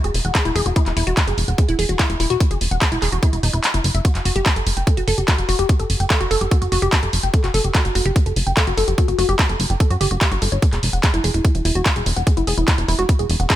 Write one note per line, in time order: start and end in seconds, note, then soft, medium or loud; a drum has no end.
0.04 0.11 E1 medium
0.04 0.09 G#4 medium
0.04 closed hi-hat medium
0.14 0.21 E1 loud
0.14 open hi-hat loud
0.25 0.31 E1 medium
0.25 0.30 F#5 medium
0.25 closed hi-hat soft
0.35 0.42 G#4 medium
0.35 kick loud
0.35 clap loud
0.35 closed hi-hat medium
0.45 0.52 E1 medium
0.45 0.48 E4 loud
0.45 closed hi-hat soft
0.56 0.62 E1 loud
0.56 0.60 G#4 loud
0.56 open hi-hat loud
0.66 0.72 E1 medium
0.66 0.71 F#4 medium
0.66 closed hi-hat medium
0.76 0.83 E4 medium
0.76 kick loud
0.76 closed hi-hat medium
0.86 0.93 E1 medium
0.86 0.94 E4 medium
0.86 clap soft
0.86 closed hi-hat medium
0.97 1.03 E1 loud
0.97 1.04 E4 loud
0.97 open hi-hat loud
1.07 1.13 E1 medium
1.07 1.12 F#4 loud
1.07 closed hi-hat medium
1.17 kick loud
1.17 clap loud
1.17 closed hi-hat medium
1.27 1.34 F#1 medium
1.27 1.32 G#4 medium
1.27 closed hi-hat medium
1.38 1.44 E1 medium
1.38 open hi-hat medium
1.48 1.55 E1 medium
1.48 1.53 F#5 medium
1.48 closed hi-hat medium
1.58 1.65 G#4 medium
1.58 kick loud
1.58 closed hi-hat medium
1.69 1.75 E1 medium
1.69 1.71 E4 loud
1.69 closed hi-hat medium
1.79 1.85 E1 loud
1.79 1.84 G#4 loud
1.79 open hi-hat loud
1.89 1.96 E1 medium
1.89 1.94 F#4 medium
1.89 closed hi-hat medium
1.99 2.07 E4 medium
1.99 kick loud
1.99 clap loud
1.99 closed hi-hat medium
2.10 2.16 E1 medium
2.10 2.17 E4 medium
2.10 closed hi-hat medium
2.20 2.26 E1 loud
2.20 2.27 E4 loud
2.20 open hi-hat loud
2.30 2.37 E1 medium
2.30 2.35 F#4 loud
2.30 closed hi-hat medium
2.40 kick loud
2.40 closed hi-hat medium
2.51 2.57 F#1 medium
2.51 2.56 G#4 medium
2.51 closed hi-hat medium
2.61 2.68 E1 loud
2.61 open hi-hat loud
2.71 2.78 E1 medium
2.71 2.76 F#5 medium
2.71 closed hi-hat medium
2.82 2.89 G#4 medium
2.82 kick loud
2.82 clap loud
2.82 closed hi-hat medium
2.92 2.98 E1 medium
2.92 2.95 E4 loud
2.92 closed hi-hat medium
3.02 3.09 E1 loud
3.02 3.07 G#4 loud
3.02 clap soft
3.02 open hi-hat loud
3.12 3.19 E1 medium
3.12 3.17 F#4 medium
3.12 closed hi-hat medium
3.23 3.30 E4 medium
3.23 kick loud
3.23 closed hi-hat medium
3.33 3.39 E1 medium
3.33 3.40 E4 medium
3.33 closed hi-hat medium
3.43 3.50 E1 loud
3.43 3.48 D#4 medium
3.43 open hi-hat loud
3.53 3.60 E1 medium
3.53 3.58 E4 medium
3.53 closed hi-hat medium
3.64 clap loud
3.64 closed hi-hat medium
3.74 3.81 F#1 medium
3.74 3.79 E4 medium
3.74 closed hi-hat medium
3.84 3.91 F#1 loud
3.84 open hi-hat loud
3.95 4.01 F#1 medium
3.95 3.99 E5 medium
3.95 closed hi-hat medium
4.05 4.12 F#4 medium
4.05 kick loud
4.05 closed hi-hat medium
4.15 4.22 F#1 medium
4.15 4.22 F#4 medium
4.15 clap soft
4.15 closed hi-hat medium
4.25 4.32 F#1 loud
4.25 4.33 F#4 loud
4.25 open hi-hat loud
4.36 4.42 F#1 medium
4.36 4.40 G4 loud
4.36 closed hi-hat medium
4.46 kick loud
4.46 clap loud
4.46 closed hi-hat medium
4.56 4.63 G1 medium
4.56 4.61 A4 medium
4.56 closed hi-hat medium
4.67 4.73 F#1 loud
4.67 open hi-hat loud
4.77 4.83 F#1 medium
4.77 4.82 G5 medium
4.77 closed hi-hat medium
4.87 4.94 A4 medium
4.87 kick loud
4.87 closed hi-hat medium
4.97 5.04 F#1 medium
4.97 5.00 F#4 loud
4.97 closed hi-hat medium
5.08 5.14 F#1 loud
5.08 5.12 A4 loud
5.08 open hi-hat loud
5.18 5.24 F#1 medium
5.18 5.23 G4 medium
5.18 closed hi-hat medium
5.28 5.35 F#4 medium
5.28 kick loud
5.28 clap loud
5.28 closed hi-hat medium
5.38 5.45 F#1 medium
5.38 5.46 F#4 medium
5.38 closed hi-hat medium
5.49 5.55 F#1 loud
5.49 5.56 F#4 loud
5.49 open hi-hat loud
5.59 5.65 F#1 medium
5.59 5.64 G4 loud
5.59 closed hi-hat medium
5.69 kick loud
5.69 closed hi-hat medium
5.80 5.86 G1 medium
5.80 5.84 A4 medium
5.80 closed hi-hat medium
5.90 5.96 F#1 loud
5.90 open hi-hat loud
6.00 6.07 F#1 medium
6.00 6.05 G5 medium
6.00 closed hi-hat medium
6.10 6.18 A4 medium
6.10 kick loud
6.10 clap loud
6.10 closed hi-hat medium
6.21 6.27 F#1 medium
6.21 6.23 F#4 loud
6.21 closed hi-hat medium
6.31 6.37 F#1 loud
6.31 6.36 A4 loud
6.31 open hi-hat loud
6.41 6.48 F#1 medium
6.41 6.46 G4 medium
6.41 closed hi-hat medium
6.51 6.59 F#4 medium
6.51 kick loud
6.51 closed hi-hat medium
6.62 6.68 F#1 medium
6.62 6.69 F#4 medium
6.62 closed hi-hat medium
6.72 6.79 F#1 loud
6.72 6.79 F#4 loud
6.72 open hi-hat loud
6.82 6.89 F#1 medium
6.82 6.87 G4 loud
6.82 closed hi-hat medium
6.92 kick loud
6.92 clap loud
6.92 closed hi-hat medium
7.03 7.09 F#1 medium
7.03 7.08 A4 medium
7.03 closed hi-hat medium
7.13 7.20 F#1 loud
7.13 open hi-hat loud
7.23 7.30 F#1 medium
7.23 7.28 G5 medium
7.23 closed hi-hat medium
7.34 7.41 A4 medium
7.34 kick loud
7.34 closed hi-hat medium
7.44 7.50 F#1 medium
7.44 7.47 F#4 loud
7.44 clap soft
7.44 closed hi-hat soft
7.54 7.61 F#1 loud
7.54 7.59 A4 loud
7.54 open hi-hat loud
7.64 7.71 F#1 medium
7.64 7.69 G4 medium
7.64 closed hi-hat medium
7.75 7.82 F#4 medium
7.75 kick loud
7.75 clap loud
7.75 closed hi-hat medium
7.85 7.92 G1 medium
7.85 7.92 F#4 medium
7.85 closed hi-hat medium
7.95 8.02 F#1 loud
7.95 8.02 F#4 loud
7.95 open hi-hat loud
8.06 8.12 F#1 medium
8.06 8.10 G4 loud
8.06 closed hi-hat medium
8.16 kick loud
8.16 closed hi-hat medium
8.26 8.33 F#1 medium
8.26 8.31 A4 medium
8.26 closed hi-hat soft
8.36 8.43 F#1 loud
8.36 open hi-hat loud
8.47 8.53 F#1 medium
8.47 8.51 G5 medium
8.47 closed hi-hat soft
8.57 8.64 A4 medium
8.57 kick loud
8.57 clap loud
8.57 closed hi-hat medium
8.67 8.74 F#1 medium
8.67 8.70 F#4 loud
8.67 closed hi-hat soft
8.77 8.84 F#1 loud
8.77 8.82 A4 loud
8.77 open hi-hat loud
8.88 8.94 F#1 medium
8.88 8.93 G4 medium
8.88 closed hi-hat medium
8.98 9.05 F#4 medium
8.98 kick loud
8.98 closed hi-hat medium
9.08 9.15 G1 medium
9.08 9.15 F#4 medium
9.08 closed hi-hat soft
9.19 9.25 F#1 loud
9.19 9.26 F#4 loud
9.19 open hi-hat loud
9.29 9.35 F#1 medium
9.29 9.34 G4 loud
9.29 closed hi-hat soft
9.39 kick loud
9.39 clap loud
9.39 closed hi-hat medium
9.49 9.56 F#1 medium
9.49 9.54 A4 medium
9.49 closed hi-hat soft
9.60 9.66 F#1 loud
9.60 open hi-hat loud
9.70 9.76 F#1 medium
9.70 9.75 G5 medium
9.70 closed hi-hat soft
9.80 9.87 A4 medium
9.80 kick loud
9.80 closed hi-hat medium
9.90 9.97 F#2 medium
9.90 9.93 F#4 loud
9.90 closed hi-hat soft
10.01 10.07 G1 loud
10.01 10.08 G4 loud
10.01 open hi-hat loud
10.11 10.18 F#1 medium
10.11 10.16 F#4 medium
10.11 closed hi-hat soft
10.21 10.26 G4 medium
10.21 kick loud
10.21 clap loud
10.21 closed hi-hat medium
10.32 10.38 G1 medium
10.32 10.34 F#4 loud
10.32 closed hi-hat soft
10.42 10.48 G1 loud
10.42 10.49 A4 medium
10.42 open hi-hat loud
10.52 10.59 G1 medium
10.52 10.55 C#5 medium
10.52 closed hi-hat medium
10.62 kick loud
10.62 closed hi-hat medium
10.73 10.79 E1 medium
10.73 10.77 G#4 medium
10.73 clap soft
10.73 closed hi-hat soft
10.83 10.89 E1 loud
10.83 open hi-hat loud
10.93 11.00 E1 medium
10.93 10.98 F#5 medium
10.93 closed hi-hat medium
11.03 11.11 G#4 medium
11.03 kick loud
11.03 clap loud
11.03 closed hi-hat medium
11.14 11.20 F#1 medium
11.14 11.17 E4 loud
11.14 closed hi-hat soft
11.24 11.31 E1 loud
11.24 11.29 G#4 loud
11.24 open hi-hat loud
11.34 11.41 E1 medium
11.34 11.41 E4 medium
11.34 closed hi-hat soft
11.45 11.52 E4 medium
11.45 kick loud
11.45 closed hi-hat medium
11.55 11.61 E1 medium
11.55 11.62 E4 medium
11.55 closed hi-hat soft
11.65 11.72 E1 loud
11.65 11.72 E4 loud
11.65 open hi-hat loud
11.75 11.82 E1 medium
11.75 11.80 F#4 loud
11.75 closed hi-hat soft
11.86 kick loud
11.86 clap loud
11.86 closed hi-hat medium
11.96 12.02 E1 medium
11.96 12.01 G#4 medium
11.96 closed hi-hat soft
12.06 12.13 E1 loud
12.06 open hi-hat loud
12.17 12.23 E1 medium
12.17 12.21 F#5 medium
12.17 closed hi-hat medium
12.27 12.34 G#4 medium
12.27 kick loud
12.27 closed hi-hat medium
12.37 12.44 F#1 medium
12.37 12.40 E4 loud
12.37 closed hi-hat medium
12.47 12.54 E1 loud
12.47 12.52 G#4 loud
12.47 open hi-hat loud
12.58 12.64 E1 medium
12.58 12.65 E4 medium
12.58 closed hi-hat medium
12.68 12.75 E4 medium
12.68 kick loud
12.68 clap loud
12.68 closed hi-hat medium
12.78 12.85 E1 medium
12.78 12.85 E4 medium
12.78 closed hi-hat medium
12.88 12.95 E1 loud
12.88 12.96 E4 loud
12.88 open hi-hat loud
12.99 13.05 E1 loud
12.99 13.03 F#4 loud
12.99 closed hi-hat medium
13.09 kick loud
13.09 closed hi-hat medium
13.19 13.26 E1 medium
13.19 13.24 G#4 medium
13.19 closed hi-hat medium
13.30 13.36 E1 loud
13.30 open hi-hat loud
13.40 13.46 E1 medium
13.40 13.45 F#5 medium
13.40 closed hi-hat medium
13.50 13.56 G#4 medium
13.50 kick loud
13.50 clap loud
13.50 closed hi-hat medium